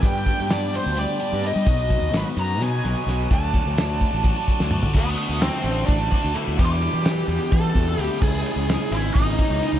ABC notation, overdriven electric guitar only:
X:1
M:7/8
L:1/8
Q:1/4=128
K:Ddor
V:1 name="Overdriven electric guitar"
[G,,D,G,B,DG] [G,B,DG] [G,B,DG]2 [G,,D,G,B,DG] [G,B,DG] [G,B,DG] | [B,,^F,B,^D^F] [B,DF] [F,B,DF]2 [B,,F,B,DF] [B,DF] [F,B,DF] | [D,^F,A,D^F] [A,DF] [F,A,DF]2 [D,F,A,DF] [A,DF] [F,A,DF] | [D,A,D^F]4- [D,A,DF] [D,A,DF] [D,A,DF] |
[E,,B,,E,G,B,E]4- [E,,B,,E,G,B,E] [E,,B,,E,G,B,E] [E,,B,,E,G,B,E] | [^C,E,^G,^CE]4- [C,E,G,CE] [C,E,G,CE] [C,E,G,CE] |]